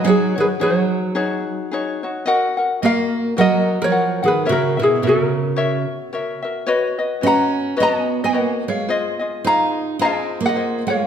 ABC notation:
X:1
M:4/4
L:1/16
Q:"Swing" 1/4=109
K:Abdor
V:1 name="Ukulele"
[Ad]2 [Ac]2 [Ad]6 z6 | z4 [Bf]4 [Be]3 [Bd]3 [Ac]2 | [GB]2 [_FA]2 [GB]6 z6 | z4 [^fb]4 [^da]3 [df]3 [^c=f]2 |
z4 [fb]4 [fa]3 [eg]3 [df]2 |]
V:2 name="Ukulele"
[EGAd]2 [EGd]2 [EGAd]4 [EGAd]4 [EGAd]2 [EGd]2 | [GBeg]2 [GBg]2 [GBe]4 [GBeg]4 [GBeg]2 [GBg]2 | [GBd_f]2 [GBf]2 [GBdf]4 [GBdf]4 [GBdf]2 [GBf]2 | [^F=B^c^d]2 [FBd]2 [FBcd]4 [FBcd]4 [FBcd]4 |
[FA=ce]2 [FAe]2 [FAce]4 [FAce]4 [FAce]4 |]
V:3 name="Steel-string acoustic guitar" clef=bass
G,2 E,2 G,6 z6 | z4 B,4 G,3 F,3 E,2 | D,2 C,2 D,6 z6 | z4 ^C4 =B,3 _B,3 A,2 |
z4 E4 =C3 B,3 A,2 |]